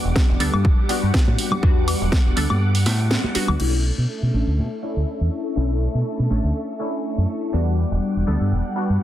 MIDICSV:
0, 0, Header, 1, 6, 480
1, 0, Start_track
1, 0, Key_signature, 2, "minor"
1, 0, Tempo, 491803
1, 1594, Time_signature, 4, 2, 24, 8
1, 8814, End_track
2, 0, Start_track
2, 0, Title_t, "String machine"
2, 0, Program_c, 0, 50
2, 0, Note_on_c, 0, 55, 78
2, 0, Note_on_c, 0, 78, 74
2, 0, Note_on_c, 0, 86, 84
2, 3477, Note_off_c, 0, 55, 0
2, 3477, Note_off_c, 0, 78, 0
2, 3477, Note_off_c, 0, 86, 0
2, 3510, Note_on_c, 0, 69, 74
2, 3510, Note_on_c, 0, 76, 69
2, 3510, Note_on_c, 0, 85, 82
2, 7313, Note_off_c, 0, 76, 0
2, 7314, Note_off_c, 0, 69, 0
2, 7314, Note_off_c, 0, 85, 0
2, 7346, Note_on_c, 0, 86, 86
2, 7347, Note_on_c, 0, 78, 70
2, 7348, Note_on_c, 0, 55, 74
2, 8814, Note_off_c, 0, 55, 0
2, 8814, Note_off_c, 0, 78, 0
2, 8814, Note_off_c, 0, 86, 0
2, 8814, End_track
3, 0, Start_track
3, 0, Title_t, "Analog polysynth"
3, 0, Program_c, 1, 90
3, 0, Note_on_c, 1, 55, 96
3, 0, Note_on_c, 1, 59, 84
3, 0, Note_on_c, 1, 62, 86
3, 0, Note_on_c, 1, 66, 102
3, 363, Note_off_c, 1, 55, 0
3, 366, Note_off_c, 1, 59, 0
3, 368, Note_off_c, 1, 62, 0
3, 371, Note_off_c, 1, 66, 0
3, 386, Note_on_c, 1, 55, 85
3, 390, Note_on_c, 1, 59, 75
3, 392, Note_on_c, 1, 62, 78
3, 395, Note_on_c, 1, 69, 90
3, 844, Note_off_c, 1, 55, 0
3, 846, Note_off_c, 1, 59, 0
3, 847, Note_off_c, 1, 62, 0
3, 848, Note_off_c, 1, 69, 0
3, 867, Note_on_c, 1, 55, 86
3, 871, Note_on_c, 1, 59, 82
3, 878, Note_on_c, 1, 62, 81
3, 882, Note_on_c, 1, 66, 97
3, 1564, Note_off_c, 1, 55, 0
3, 1566, Note_off_c, 1, 59, 0
3, 1570, Note_off_c, 1, 62, 0
3, 1572, Note_off_c, 1, 66, 0
3, 1587, Note_on_c, 1, 55, 91
3, 1592, Note_on_c, 1, 59, 89
3, 1596, Note_on_c, 1, 62, 91
3, 1603, Note_on_c, 1, 66, 109
3, 2284, Note_off_c, 1, 55, 0
3, 2287, Note_off_c, 1, 59, 0
3, 2289, Note_off_c, 1, 62, 0
3, 2292, Note_off_c, 1, 66, 0
3, 2305, Note_on_c, 1, 55, 82
3, 2309, Note_on_c, 1, 59, 74
3, 2312, Note_on_c, 1, 62, 75
3, 2314, Note_on_c, 1, 69, 90
3, 2763, Note_off_c, 1, 55, 0
3, 2765, Note_off_c, 1, 59, 0
3, 2766, Note_off_c, 1, 62, 0
3, 2767, Note_off_c, 1, 69, 0
3, 3265, Note_on_c, 1, 55, 89
3, 3267, Note_on_c, 1, 59, 82
3, 3271, Note_on_c, 1, 62, 78
3, 3273, Note_on_c, 1, 66, 103
3, 3483, Note_off_c, 1, 55, 0
3, 3484, Note_off_c, 1, 59, 0
3, 3486, Note_off_c, 1, 62, 0
3, 3487, Note_off_c, 1, 66, 0
3, 3503, Note_on_c, 1, 57, 91
3, 3508, Note_on_c, 1, 61, 83
3, 3513, Note_on_c, 1, 62, 82
3, 3518, Note_on_c, 1, 64, 98
3, 4202, Note_off_c, 1, 57, 0
3, 4205, Note_off_c, 1, 61, 0
3, 4207, Note_off_c, 1, 62, 0
3, 4210, Note_off_c, 1, 64, 0
3, 4230, Note_on_c, 1, 57, 80
3, 4234, Note_on_c, 1, 61, 70
3, 4235, Note_on_c, 1, 62, 72
3, 4237, Note_on_c, 1, 69, 85
3, 4686, Note_off_c, 1, 57, 0
3, 4687, Note_off_c, 1, 61, 0
3, 4688, Note_off_c, 1, 62, 0
3, 4689, Note_off_c, 1, 69, 0
3, 4707, Note_on_c, 1, 57, 82
3, 4710, Note_on_c, 1, 61, 78
3, 4717, Note_on_c, 1, 62, 78
3, 4724, Note_on_c, 1, 64, 89
3, 5404, Note_off_c, 1, 57, 0
3, 5406, Note_off_c, 1, 61, 0
3, 5409, Note_off_c, 1, 62, 0
3, 5413, Note_off_c, 1, 64, 0
3, 5425, Note_on_c, 1, 57, 92
3, 5431, Note_on_c, 1, 61, 83
3, 5436, Note_on_c, 1, 62, 85
3, 5440, Note_on_c, 1, 64, 105
3, 6123, Note_off_c, 1, 57, 0
3, 6126, Note_off_c, 1, 61, 0
3, 6129, Note_off_c, 1, 62, 0
3, 6131, Note_off_c, 1, 64, 0
3, 6152, Note_on_c, 1, 57, 77
3, 6154, Note_on_c, 1, 61, 75
3, 6157, Note_on_c, 1, 62, 70
3, 6160, Note_on_c, 1, 69, 88
3, 6607, Note_off_c, 1, 57, 0
3, 6608, Note_off_c, 1, 61, 0
3, 6609, Note_off_c, 1, 62, 0
3, 6611, Note_off_c, 1, 69, 0
3, 6630, Note_on_c, 1, 57, 82
3, 6635, Note_on_c, 1, 61, 75
3, 6640, Note_on_c, 1, 62, 75
3, 6646, Note_on_c, 1, 64, 94
3, 7326, Note_off_c, 1, 57, 0
3, 7328, Note_off_c, 1, 61, 0
3, 7331, Note_off_c, 1, 62, 0
3, 7334, Note_off_c, 1, 64, 0
3, 7348, Note_on_c, 1, 55, 93
3, 7353, Note_on_c, 1, 59, 81
3, 7356, Note_on_c, 1, 62, 84
3, 7362, Note_on_c, 1, 66, 96
3, 8044, Note_off_c, 1, 55, 0
3, 8047, Note_off_c, 1, 59, 0
3, 8049, Note_off_c, 1, 62, 0
3, 8052, Note_off_c, 1, 66, 0
3, 8070, Note_on_c, 1, 55, 76
3, 8072, Note_on_c, 1, 59, 74
3, 8074, Note_on_c, 1, 62, 74
3, 8077, Note_on_c, 1, 69, 89
3, 8525, Note_off_c, 1, 55, 0
3, 8527, Note_off_c, 1, 59, 0
3, 8528, Note_off_c, 1, 62, 0
3, 8529, Note_off_c, 1, 69, 0
3, 8546, Note_on_c, 1, 55, 85
3, 8550, Note_on_c, 1, 59, 78
3, 8556, Note_on_c, 1, 62, 78
3, 8561, Note_on_c, 1, 66, 90
3, 8814, Note_off_c, 1, 55, 0
3, 8814, Note_off_c, 1, 59, 0
3, 8814, Note_off_c, 1, 62, 0
3, 8814, Note_off_c, 1, 66, 0
3, 8814, End_track
4, 0, Start_track
4, 0, Title_t, "Fingered electric bass"
4, 0, Program_c, 2, 33
4, 44, Note_on_c, 2, 28, 95
4, 111, Note_off_c, 2, 28, 0
4, 282, Note_on_c, 2, 28, 86
4, 351, Note_off_c, 2, 28, 0
4, 393, Note_on_c, 2, 38, 87
4, 473, Note_off_c, 2, 38, 0
4, 525, Note_on_c, 2, 43, 104
4, 632, Note_on_c, 2, 28, 81
4, 647, Note_off_c, 2, 43, 0
4, 713, Note_off_c, 2, 28, 0
4, 1005, Note_on_c, 2, 43, 77
4, 1072, Note_off_c, 2, 43, 0
4, 1244, Note_on_c, 2, 45, 85
4, 1311, Note_off_c, 2, 45, 0
4, 1590, Note_on_c, 2, 40, 94
4, 1882, Note_off_c, 2, 40, 0
4, 1963, Note_on_c, 2, 28, 103
4, 2031, Note_off_c, 2, 28, 0
4, 2203, Note_on_c, 2, 28, 82
4, 2271, Note_off_c, 2, 28, 0
4, 2313, Note_on_c, 2, 38, 89
4, 2393, Note_off_c, 2, 38, 0
4, 2443, Note_on_c, 2, 43, 101
4, 2791, Note_off_c, 2, 43, 0
4, 2791, Note_on_c, 2, 45, 101
4, 3082, Note_off_c, 2, 45, 0
4, 3401, Note_on_c, 2, 38, 84
4, 3470, Note_off_c, 2, 38, 0
4, 3514, Note_on_c, 2, 35, 91
4, 3803, Note_off_c, 2, 35, 0
4, 3883, Note_on_c, 2, 47, 89
4, 3951, Note_off_c, 2, 47, 0
4, 4122, Note_on_c, 2, 47, 77
4, 4190, Note_off_c, 2, 47, 0
4, 4232, Note_on_c, 2, 33, 79
4, 4312, Note_off_c, 2, 33, 0
4, 4362, Note_on_c, 2, 38, 90
4, 4473, Note_on_c, 2, 47, 73
4, 4487, Note_off_c, 2, 38, 0
4, 4553, Note_off_c, 2, 47, 0
4, 4843, Note_on_c, 2, 38, 74
4, 4911, Note_off_c, 2, 38, 0
4, 5082, Note_on_c, 2, 40, 76
4, 5150, Note_off_c, 2, 40, 0
4, 5432, Note_on_c, 2, 35, 89
4, 5722, Note_off_c, 2, 35, 0
4, 5801, Note_on_c, 2, 47, 86
4, 5870, Note_off_c, 2, 47, 0
4, 6043, Note_on_c, 2, 47, 76
4, 6111, Note_off_c, 2, 47, 0
4, 6152, Note_on_c, 2, 33, 84
4, 6233, Note_off_c, 2, 33, 0
4, 6283, Note_on_c, 2, 38, 94
4, 6351, Note_off_c, 2, 38, 0
4, 7004, Note_on_c, 2, 42, 70
4, 7071, Note_off_c, 2, 42, 0
4, 7353, Note_on_c, 2, 40, 87
4, 7643, Note_off_c, 2, 40, 0
4, 7723, Note_on_c, 2, 28, 90
4, 7791, Note_off_c, 2, 28, 0
4, 7965, Note_on_c, 2, 28, 81
4, 8032, Note_off_c, 2, 28, 0
4, 8077, Note_on_c, 2, 38, 84
4, 8155, Note_off_c, 2, 38, 0
4, 8203, Note_on_c, 2, 43, 95
4, 8313, Note_on_c, 2, 28, 77
4, 8328, Note_off_c, 2, 43, 0
4, 8393, Note_off_c, 2, 28, 0
4, 8682, Note_on_c, 2, 43, 73
4, 8750, Note_off_c, 2, 43, 0
4, 8814, End_track
5, 0, Start_track
5, 0, Title_t, "Muted fingered electric bass strokes"
5, 3273, Note_on_c, 9, 29, 42
5, 3370, Note_off_c, 9, 29, 0
5, 8814, End_track
6, 0, Start_track
6, 0, Title_t, "Drums"
6, 49, Note_on_c, 9, 54, 54
6, 147, Note_off_c, 9, 54, 0
6, 153, Note_on_c, 9, 36, 112
6, 155, Note_on_c, 9, 38, 108
6, 250, Note_off_c, 9, 36, 0
6, 252, Note_off_c, 9, 38, 0
6, 392, Note_on_c, 9, 54, 83
6, 393, Note_on_c, 9, 46, 98
6, 490, Note_off_c, 9, 46, 0
6, 490, Note_off_c, 9, 54, 0
6, 519, Note_on_c, 9, 63, 58
6, 523, Note_on_c, 9, 76, 90
6, 525, Note_on_c, 9, 54, 59
6, 616, Note_off_c, 9, 63, 0
6, 620, Note_off_c, 9, 76, 0
6, 622, Note_off_c, 9, 54, 0
6, 632, Note_on_c, 9, 36, 114
6, 730, Note_off_c, 9, 36, 0
6, 871, Note_on_c, 9, 46, 104
6, 873, Note_on_c, 9, 54, 96
6, 969, Note_off_c, 9, 46, 0
6, 971, Note_off_c, 9, 54, 0
6, 1009, Note_on_c, 9, 54, 53
6, 1106, Note_off_c, 9, 54, 0
6, 1111, Note_on_c, 9, 36, 113
6, 1113, Note_on_c, 9, 38, 122
6, 1209, Note_off_c, 9, 36, 0
6, 1210, Note_off_c, 9, 38, 0
6, 1247, Note_on_c, 9, 63, 93
6, 1345, Note_off_c, 9, 63, 0
6, 1352, Note_on_c, 9, 46, 102
6, 1353, Note_on_c, 9, 54, 90
6, 1449, Note_off_c, 9, 46, 0
6, 1451, Note_off_c, 9, 54, 0
6, 1471, Note_on_c, 9, 63, 60
6, 1479, Note_on_c, 9, 64, 77
6, 1481, Note_on_c, 9, 54, 52
6, 1481, Note_on_c, 9, 76, 87
6, 1569, Note_off_c, 9, 63, 0
6, 1576, Note_off_c, 9, 64, 0
6, 1579, Note_off_c, 9, 54, 0
6, 1579, Note_off_c, 9, 76, 0
6, 1590, Note_on_c, 9, 36, 111
6, 1688, Note_off_c, 9, 36, 0
6, 1831, Note_on_c, 9, 54, 102
6, 1832, Note_on_c, 9, 46, 104
6, 1832, Note_on_c, 9, 76, 71
6, 1929, Note_off_c, 9, 54, 0
6, 1930, Note_off_c, 9, 46, 0
6, 1930, Note_off_c, 9, 76, 0
6, 1954, Note_on_c, 9, 54, 55
6, 2051, Note_off_c, 9, 54, 0
6, 2070, Note_on_c, 9, 36, 111
6, 2073, Note_on_c, 9, 38, 114
6, 2167, Note_off_c, 9, 36, 0
6, 2171, Note_off_c, 9, 38, 0
6, 2310, Note_on_c, 9, 54, 93
6, 2311, Note_on_c, 9, 46, 101
6, 2407, Note_off_c, 9, 54, 0
6, 2409, Note_off_c, 9, 46, 0
6, 2441, Note_on_c, 9, 76, 85
6, 2442, Note_on_c, 9, 63, 58
6, 2445, Note_on_c, 9, 54, 61
6, 2539, Note_off_c, 9, 76, 0
6, 2540, Note_off_c, 9, 63, 0
6, 2543, Note_off_c, 9, 54, 0
6, 2550, Note_on_c, 9, 54, 37
6, 2648, Note_off_c, 9, 54, 0
6, 2682, Note_on_c, 9, 46, 62
6, 2780, Note_off_c, 9, 46, 0
6, 2786, Note_on_c, 9, 54, 107
6, 2792, Note_on_c, 9, 46, 102
6, 2793, Note_on_c, 9, 38, 62
6, 2883, Note_off_c, 9, 54, 0
6, 2889, Note_off_c, 9, 46, 0
6, 2891, Note_off_c, 9, 38, 0
6, 2918, Note_on_c, 9, 54, 49
6, 3016, Note_off_c, 9, 54, 0
6, 3033, Note_on_c, 9, 38, 121
6, 3037, Note_on_c, 9, 54, 37
6, 3130, Note_off_c, 9, 38, 0
6, 3134, Note_off_c, 9, 54, 0
6, 3162, Note_on_c, 9, 63, 83
6, 3260, Note_off_c, 9, 63, 0
6, 3270, Note_on_c, 9, 46, 98
6, 3275, Note_on_c, 9, 54, 92
6, 3367, Note_off_c, 9, 46, 0
6, 3372, Note_off_c, 9, 54, 0
6, 3390, Note_on_c, 9, 54, 49
6, 3400, Note_on_c, 9, 64, 74
6, 3400, Note_on_c, 9, 76, 90
6, 3401, Note_on_c, 9, 63, 59
6, 3487, Note_off_c, 9, 54, 0
6, 3498, Note_off_c, 9, 64, 0
6, 3498, Note_off_c, 9, 76, 0
6, 3499, Note_off_c, 9, 63, 0
6, 3511, Note_on_c, 9, 49, 78
6, 3608, Note_off_c, 9, 49, 0
6, 8814, End_track
0, 0, End_of_file